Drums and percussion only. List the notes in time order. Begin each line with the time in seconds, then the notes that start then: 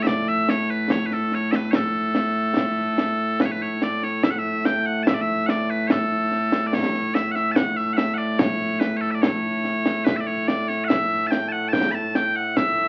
0.07 concert bass drum, snare
0.49 snare
0.90 concert bass drum, snare
1.11 snare
1.32 snare
1.52 snare
1.73 concert bass drum, snare
2.15 snare
2.57 concert bass drum, snare
2.98 snare
3.40 concert bass drum, snare
3.82 snare
4.03 snare
4.23 concert bass drum, snare
4.65 snare
5.07 concert bass drum, snare
5.49 snare
5.90 concert bass drum, snare
6.31 snare
6.52 snare
6.73 concert bass drum, snare
6.94 snare
7.15 snare
7.36 snare
7.56 concert bass drum, snare
7.98 snare
8.39 concert bass drum, snare
8.81 snare
9.23 concert bass drum, snare
9.64 snare
9.86 snare
10.06 concert bass drum, snare
10.48 snare
10.69 snare
10.90 concert bass drum, snare
11.32 snare
11.73 concert bass drum, snare
12.15 snare
12.57 concert bass drum, snare